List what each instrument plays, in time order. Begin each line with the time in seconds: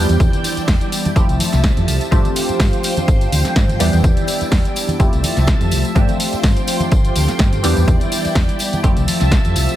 Already playing: analog polysynth E3 G3 B3 D4 G4, string machine E4 D5 G5
0.09 fingered electric bass E2, closed hi-hat, tambourine
0.20 fingered electric bass E2, kick, closed hi-hat, tambourine, low conga
0.33 closed hi-hat, tambourine, high conga
0.44 open hi-hat, tambourine
0.57 muted fingered electric bass stroke, closed hi-hat, tambourine
0.68 fingered electric bass E2, kick, snare, open hi-hat, tambourine, high conga
0.81 closed hi-hat, tambourine
0.92 open hi-hat, tambourine
1.05 closed hi-hat, tambourine, high conga
1.16 fingered electric bass F1, analog polysynth F3 A3 C4 E4 G4, string machine F3 E5 A5, kick, closed hi-hat, tambourine
1.29 fingered electric bass C2, closed hi-hat, tambourine
1.40 open hi-hat, tambourine, high conga
1.53 fingered electric bass C2, snare, closed hi-hat, tambourine
1.64 kick, snare, closed hi-hat, tambourine
1.77 fingered electric bass F2, closed hi-hat, tambourine, high conga
1.88 fingered electric bass C2, open hi-hat, tambourine
2.01 closed hi-hat, tambourine
2.11 fingered electric bass G2, analog polysynth F3 A3 C4 D4 G4, string machine F4 C5 G5, kick, closed hi-hat, tambourine, low conga
2.25 closed hi-hat, tambourine, high conga
2.36 open hi-hat, tambourine
2.49 muted fingered electric bass stroke, closed hi-hat, tambourine
2.60 fingered electric bass G2, kick, snare, open hi-hat, tambourine, high conga
2.73 closed hi-hat, tambourine
2.83 open hi-hat, tambourine
2.96 closed hi-hat, tambourine, high conga
3.08 fingered electric bass G1, kick, closed hi-hat, tambourine
3.21 closed hi-hat, tambourine
3.32 fingered electric bass D2, open hi-hat, tambourine, high conga
3.45 muted fingered electric bass stroke, snare, closed hi-hat, tambourine
3.56 fingered electric bass G2, kick, snare, closed hi-hat, tambourine
3.68 fingered electric bass G1, closed hi-hat, tambourine, high conga
3.79 fingered electric bass E2, analog polysynth E3 G3 B3 D4 G4, string machine E4 D5, open hi-hat, tambourine
3.93 fingered electric bass E2, closed hi-hat, tambourine
4.03 fingered electric bass E2, kick, closed hi-hat, tambourine, low conga
4.17 closed hi-hat, tambourine, high conga
4.27 open hi-hat, tambourine
4.41 muted fingered electric bass stroke, closed hi-hat, tambourine
4.52 fingered electric bass E2, kick, snare, open hi-hat, tambourine, high conga
4.65 closed hi-hat, tambourine
4.76 open hi-hat, tambourine
4.88 closed hi-hat, tambourine, high conga
4.99 fingered electric bass F1, analog polysynth F3 A3 C4 E4 G4, string machine F3 E5 A5, kick, closed hi-hat, tambourine
5.13 fingered electric bass C2, closed hi-hat, tambourine
5.24 open hi-hat, tambourine, high conga
5.37 fingered electric bass C2, snare, closed hi-hat, tambourine
5.47 kick, snare, closed hi-hat, tambourine
5.48 tambourine
5.61 fingered electric bass F2, closed hi-hat, tambourine, high conga
5.71 fingered electric bass C2, open hi-hat, tambourine
5.85 closed hi-hat, tambourine
5.95 fingered electric bass G2, analog polysynth F3 A3 C4 D4 G4, string machine F4 C5 G5, kick, closed hi-hat, tambourine, low conga
6.08 closed hi-hat, tambourine, high conga
6.20 open hi-hat, tambourine
6.33 muted fingered electric bass stroke, closed hi-hat, tambourine
6.43 fingered electric bass G2, kick, snare, open hi-hat, tambourine, high conga
6.57 closed hi-hat, tambourine
6.67 open hi-hat, tambourine
6.80 closed hi-hat, tambourine, high conga
6.92 fingered electric bass G1, kick, closed hi-hat, tambourine
7.05 closed hi-hat, tambourine
7.16 fingered electric bass D2, open hi-hat, tambourine, high conga
7.28 muted fingered electric bass stroke, snare, closed hi-hat, tambourine
7.39 fingered electric bass G2, kick, snare, closed hi-hat, tambourine
7.52 fingered electric bass G1, closed hi-hat, tambourine, high conga
7.63 fingered electric bass E2, analog polysynth E3 G3 B3 D4 G4, string machine E4 D5, open hi-hat, tambourine
7.77 fingered electric bass E2, closed hi-hat, tambourine
7.87 fingered electric bass E2, kick, closed hi-hat, tambourine, low conga
8.00 closed hi-hat, tambourine, high conga
8.12 open hi-hat, tambourine
8.25 muted fingered electric bass stroke, closed hi-hat, tambourine
8.35 fingered electric bass E2, kick, snare, open hi-hat, tambourine, high conga
8.49 closed hi-hat, tambourine
8.59 open hi-hat, tambourine
8.73 closed hi-hat, tambourine, high conga
8.83 fingered electric bass F1, analog polysynth F3 A3 C4 E4 G4, string machine F3 E5 A5, kick, closed hi-hat, tambourine
8.97 fingered electric bass C2, closed hi-hat, tambourine
9.07 open hi-hat, tambourine, high conga
9.20 fingered electric bass C2, snare, closed hi-hat, tambourine
9.31 kick, snare, closed hi-hat, tambourine
9.44 fingered electric bass F2, closed hi-hat, tambourine, high conga
9.56 fingered electric bass C2, open hi-hat, tambourine
9.69 closed hi-hat, tambourine